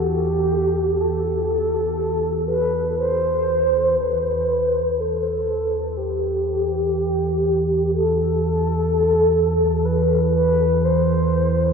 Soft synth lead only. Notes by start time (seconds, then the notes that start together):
0.00 G4
1.01 A4
2.48 B4
2.99 C5
4.01 B4
5.00 A4
5.97 G4
7.92 A4
9.85 B4
10.35 B4
10.85 C5